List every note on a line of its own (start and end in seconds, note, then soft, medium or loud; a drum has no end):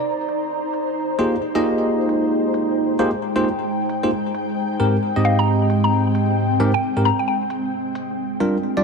0.00 5.68 D#4 medium
0.00 5.89 C5 medium
0.00 2.32 D5 medium
0.00 5.22 A#5 medium
0.29 closed hi-hat medium
0.74 closed hi-hat medium
1.03 8.18 G#3 medium
1.19 1.35 A#3 medium
1.19 1.35 D#4 medium
1.19 1.35 F4 medium
1.19 1.35 G4 medium
1.19 1.35 G#4 medium
1.19 1.35 C5 medium
1.19 closed hi-hat medium
1.55 2.97 A#3 medium
1.55 2.97 D#4 medium
1.55 2.97 F4 medium
1.55 2.97 G4 medium
1.55 2.97 G#4 medium
1.55 2.97 D#5 medium
1.64 8.84 G5 medium
1.64 closed hi-hat medium
2.09 closed hi-hat medium
2.54 closed hi-hat medium
2.99 3.10 A#3 medium
2.99 3.10 D#4 medium
2.99 3.10 F4 medium
2.99 3.10 G4 medium
2.99 3.10 G#4 medium
2.99 3.10 C5 medium
2.99 closed hi-hat medium
3.36 3.47 A#3 medium
3.36 3.47 D#4 medium
3.36 3.47 F4 medium
3.36 3.47 G4 medium
3.36 3.47 G#4 medium
3.36 3.47 C5 medium
3.36 closed hi-hat medium
3.44 closed hi-hat medium
3.89 closed hi-hat medium
4.03 4.10 A#3 medium
4.03 4.10 D#4 medium
4.03 4.10 F4 medium
4.03 4.10 G4 medium
4.03 4.10 G#4 medium
4.03 4.10 C5 medium
4.34 8.84 C4 medium
4.34 closed hi-hat medium
4.80 4.96 G#2 medium
4.80 4.96 C4 medium
4.80 4.96 G4 medium
4.80 4.96 A#4 medium
4.80 closed hi-hat medium
5.16 6.58 G#2 medium
5.16 6.58 C4 medium
5.16 6.58 G4 medium
5.16 6.58 D#5 medium
5.25 5.36 F5 medium
5.25 closed hi-hat medium
5.39 5.54 A#5 medium
5.70 closed hi-hat medium
5.84 5.99 A#5 medium
6.15 closed hi-hat medium
6.60 6.71 G#2 medium
6.60 6.71 C4 medium
6.60 6.71 G4 medium
6.60 6.71 A#4 medium
6.60 closed hi-hat medium
6.74 6.90 G5 medium
6.97 7.08 G#2 medium
6.97 7.08 C4 medium
6.97 7.08 G4 medium
6.97 7.08 A#4 medium
6.97 closed hi-hat medium
7.05 7.17 A#5 medium
7.05 closed hi-hat medium
7.19 7.25 G5 medium
7.28 7.37 G5 medium
7.50 closed hi-hat medium
7.95 closed hi-hat loud
8.18 8.84 F4 medium
8.40 8.56 G3 medium
8.40 8.56 D4 medium
8.40 8.56 F4 medium
8.40 8.56 A#4 medium
8.40 closed hi-hat medium
8.77 8.84 G3 medium
8.77 8.84 D4 medium
8.77 8.84 F4 medium
8.77 8.84 D5 loud